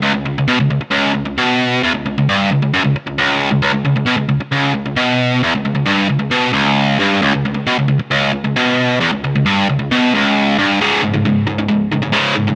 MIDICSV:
0, 0, Header, 1, 3, 480
1, 0, Start_track
1, 0, Tempo, 448430
1, 37, Time_signature, 4, 2, 24, 8
1, 13434, End_track
2, 0, Start_track
2, 0, Title_t, "Distorted electric guitar"
2, 0, Program_c, 0, 30
2, 21, Note_on_c, 0, 37, 99
2, 133, Note_off_c, 0, 37, 0
2, 146, Note_on_c, 0, 37, 85
2, 260, Note_off_c, 0, 37, 0
2, 273, Note_on_c, 0, 37, 78
2, 396, Note_off_c, 0, 37, 0
2, 407, Note_on_c, 0, 37, 80
2, 506, Note_off_c, 0, 37, 0
2, 510, Note_on_c, 0, 47, 97
2, 628, Note_off_c, 0, 47, 0
2, 643, Note_on_c, 0, 37, 75
2, 742, Note_off_c, 0, 37, 0
2, 755, Note_on_c, 0, 37, 79
2, 855, Note_off_c, 0, 37, 0
2, 974, Note_on_c, 0, 37, 120
2, 1208, Note_off_c, 0, 37, 0
2, 1221, Note_on_c, 0, 37, 77
2, 1332, Note_off_c, 0, 37, 0
2, 1345, Note_on_c, 0, 37, 73
2, 1472, Note_off_c, 0, 37, 0
2, 1476, Note_on_c, 0, 47, 101
2, 1953, Note_off_c, 0, 47, 0
2, 1965, Note_on_c, 0, 40, 104
2, 2076, Note_off_c, 0, 40, 0
2, 2080, Note_on_c, 0, 37, 80
2, 2192, Note_off_c, 0, 37, 0
2, 2205, Note_on_c, 0, 37, 78
2, 2321, Note_off_c, 0, 37, 0
2, 2333, Note_on_c, 0, 37, 75
2, 2446, Note_off_c, 0, 37, 0
2, 2451, Note_on_c, 0, 43, 105
2, 2681, Note_off_c, 0, 43, 0
2, 2692, Note_on_c, 0, 37, 70
2, 2794, Note_off_c, 0, 37, 0
2, 2807, Note_on_c, 0, 37, 71
2, 2923, Note_off_c, 0, 37, 0
2, 2927, Note_on_c, 0, 42, 103
2, 3039, Note_off_c, 0, 42, 0
2, 3045, Note_on_c, 0, 37, 73
2, 3156, Note_off_c, 0, 37, 0
2, 3287, Note_on_c, 0, 37, 74
2, 3395, Note_off_c, 0, 37, 0
2, 3408, Note_on_c, 0, 37, 107
2, 3745, Note_off_c, 0, 37, 0
2, 3758, Note_on_c, 0, 37, 78
2, 3865, Note_off_c, 0, 37, 0
2, 3878, Note_on_c, 0, 37, 98
2, 3983, Note_off_c, 0, 37, 0
2, 3996, Note_on_c, 0, 37, 75
2, 4112, Note_off_c, 0, 37, 0
2, 4125, Note_on_c, 0, 37, 85
2, 4233, Note_off_c, 0, 37, 0
2, 4246, Note_on_c, 0, 37, 79
2, 4350, Note_off_c, 0, 37, 0
2, 4354, Note_on_c, 0, 47, 101
2, 4464, Note_off_c, 0, 47, 0
2, 4468, Note_on_c, 0, 37, 85
2, 4577, Note_off_c, 0, 37, 0
2, 4590, Note_on_c, 0, 37, 72
2, 4701, Note_off_c, 0, 37, 0
2, 4835, Note_on_c, 0, 37, 108
2, 5057, Note_off_c, 0, 37, 0
2, 5070, Note_on_c, 0, 37, 74
2, 5185, Note_off_c, 0, 37, 0
2, 5198, Note_on_c, 0, 37, 75
2, 5309, Note_off_c, 0, 37, 0
2, 5313, Note_on_c, 0, 47, 89
2, 5791, Note_off_c, 0, 47, 0
2, 5812, Note_on_c, 0, 40, 99
2, 5921, Note_off_c, 0, 40, 0
2, 5939, Note_on_c, 0, 37, 78
2, 6034, Note_off_c, 0, 37, 0
2, 6047, Note_on_c, 0, 37, 76
2, 6139, Note_off_c, 0, 37, 0
2, 6152, Note_on_c, 0, 37, 69
2, 6264, Note_off_c, 0, 37, 0
2, 6268, Note_on_c, 0, 43, 110
2, 6509, Note_off_c, 0, 43, 0
2, 6520, Note_on_c, 0, 37, 73
2, 6613, Note_off_c, 0, 37, 0
2, 6626, Note_on_c, 0, 37, 81
2, 6749, Note_off_c, 0, 37, 0
2, 6754, Note_on_c, 0, 47, 114
2, 6985, Note_off_c, 0, 47, 0
2, 6989, Note_on_c, 0, 37, 107
2, 7468, Note_off_c, 0, 37, 0
2, 7488, Note_on_c, 0, 43, 119
2, 7717, Note_off_c, 0, 43, 0
2, 7729, Note_on_c, 0, 37, 106
2, 7838, Note_off_c, 0, 37, 0
2, 7855, Note_on_c, 0, 37, 82
2, 7963, Note_off_c, 0, 37, 0
2, 7975, Note_on_c, 0, 37, 82
2, 8062, Note_off_c, 0, 37, 0
2, 8075, Note_on_c, 0, 37, 72
2, 8198, Note_off_c, 0, 37, 0
2, 8206, Note_on_c, 0, 47, 100
2, 8316, Note_off_c, 0, 47, 0
2, 8335, Note_on_c, 0, 37, 83
2, 8424, Note_off_c, 0, 37, 0
2, 8437, Note_on_c, 0, 37, 71
2, 8545, Note_off_c, 0, 37, 0
2, 8680, Note_on_c, 0, 37, 110
2, 8906, Note_off_c, 0, 37, 0
2, 8919, Note_on_c, 0, 37, 69
2, 9028, Note_off_c, 0, 37, 0
2, 9041, Note_on_c, 0, 37, 79
2, 9166, Note_off_c, 0, 37, 0
2, 9166, Note_on_c, 0, 47, 96
2, 9633, Note_off_c, 0, 47, 0
2, 9637, Note_on_c, 0, 40, 100
2, 9751, Note_off_c, 0, 40, 0
2, 9765, Note_on_c, 0, 37, 69
2, 9877, Note_off_c, 0, 37, 0
2, 9890, Note_on_c, 0, 37, 79
2, 10000, Note_off_c, 0, 37, 0
2, 10013, Note_on_c, 0, 37, 75
2, 10121, Note_off_c, 0, 37, 0
2, 10125, Note_on_c, 0, 43, 110
2, 10354, Note_off_c, 0, 43, 0
2, 10375, Note_on_c, 0, 37, 78
2, 10466, Note_off_c, 0, 37, 0
2, 10479, Note_on_c, 0, 37, 72
2, 10599, Note_off_c, 0, 37, 0
2, 10610, Note_on_c, 0, 47, 112
2, 10837, Note_off_c, 0, 47, 0
2, 10857, Note_on_c, 0, 37, 105
2, 11321, Note_off_c, 0, 37, 0
2, 11329, Note_on_c, 0, 43, 108
2, 11557, Note_off_c, 0, 43, 0
2, 11567, Note_on_c, 0, 37, 85
2, 11568, Note_on_c, 0, 44, 88
2, 11574, Note_on_c, 0, 49, 92
2, 11789, Note_off_c, 0, 37, 0
2, 11789, Note_off_c, 0, 44, 0
2, 11792, Note_off_c, 0, 49, 0
2, 11805, Note_on_c, 0, 44, 88
2, 11811, Note_on_c, 0, 37, 64
2, 11906, Note_off_c, 0, 44, 0
2, 11914, Note_off_c, 0, 37, 0
2, 11919, Note_on_c, 0, 44, 83
2, 11927, Note_on_c, 0, 37, 65
2, 12032, Note_off_c, 0, 37, 0
2, 12033, Note_off_c, 0, 44, 0
2, 12045, Note_on_c, 0, 37, 70
2, 12046, Note_on_c, 0, 44, 78
2, 12258, Note_off_c, 0, 37, 0
2, 12259, Note_off_c, 0, 44, 0
2, 12278, Note_on_c, 0, 44, 90
2, 12284, Note_on_c, 0, 37, 60
2, 12390, Note_off_c, 0, 44, 0
2, 12392, Note_off_c, 0, 37, 0
2, 12403, Note_on_c, 0, 44, 67
2, 12404, Note_on_c, 0, 37, 63
2, 12499, Note_off_c, 0, 37, 0
2, 12499, Note_off_c, 0, 44, 0
2, 12512, Note_on_c, 0, 37, 80
2, 12512, Note_on_c, 0, 44, 85
2, 12732, Note_off_c, 0, 44, 0
2, 12733, Note_off_c, 0, 37, 0
2, 12762, Note_on_c, 0, 44, 74
2, 12770, Note_on_c, 0, 37, 55
2, 12861, Note_off_c, 0, 44, 0
2, 12866, Note_off_c, 0, 37, 0
2, 12874, Note_on_c, 0, 44, 81
2, 12879, Note_on_c, 0, 37, 60
2, 12971, Note_off_c, 0, 44, 0
2, 12972, Note_off_c, 0, 37, 0
2, 12984, Note_on_c, 0, 44, 80
2, 12985, Note_on_c, 0, 37, 75
2, 12991, Note_on_c, 0, 49, 92
2, 13218, Note_off_c, 0, 44, 0
2, 13219, Note_off_c, 0, 37, 0
2, 13222, Note_off_c, 0, 49, 0
2, 13231, Note_on_c, 0, 44, 75
2, 13234, Note_on_c, 0, 37, 64
2, 13347, Note_off_c, 0, 44, 0
2, 13354, Note_off_c, 0, 37, 0
2, 13359, Note_on_c, 0, 44, 71
2, 13367, Note_on_c, 0, 37, 59
2, 13434, Note_off_c, 0, 37, 0
2, 13434, Note_off_c, 0, 44, 0
2, 13434, End_track
3, 0, Start_track
3, 0, Title_t, "Muted distorted electric guitar strokes"
3, 868, Note_on_c, 9, 29, 57
3, 975, Note_off_c, 9, 29, 0
3, 3169, Note_on_c, 9, 29, 60
3, 3276, Note_off_c, 9, 29, 0
3, 4714, Note_on_c, 9, 29, 52
3, 4821, Note_off_c, 9, 29, 0
3, 8557, Note_on_c, 9, 29, 62
3, 8664, Note_off_c, 9, 29, 0
3, 13434, End_track
0, 0, End_of_file